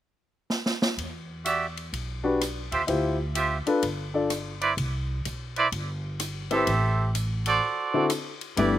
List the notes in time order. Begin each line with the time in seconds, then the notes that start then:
0.50 snare
0.66 snare
0.82 snare
0.97 E2, ride
1.45 F#4 G4 D5 E5, hi-hat pedal, ride
1.77 ride
1.93 B1, ride
2.24 D4 F#4 G4 B4
2.41 cross-stick, hi-hat pedal, ride
2.72 D#2 F4 G4 C5 E5, ride
2.87 D2 E4 F4 G4 C5, ride
3.35 F4 G4 C5 E5, hi-hat pedal, ride
3.66 D4 F4 A4 B4, muted upright bass stroke, ride
3.83 G1, ride
4.14 D4 F4 A4 D5
4.30 cross-stick, hi-hat pedal, ride
4.61 E4 B4 C5 D5, ride
4.77 C2, ride
5.25 B1, hi-hat pedal, ride
5.56 E4 B4 C5 D5, ride
5.72 G1, ride
6.20 cross-stick, hi-hat pedal, ride
6.51 C4 E4 G4 A4 B4 C5 E5, ride
6.67 A1, ride
7.15 hi-hat pedal, ride
7.46 F#4 A4 C5 D5, ride
7.94 D3 C4 E4 F#4 A4
8.10 cross-stick, hi-hat pedal, ride
8.41 ride
8.56 G1 G3 A3 B3 D4 E4 G4 B4 D5, ride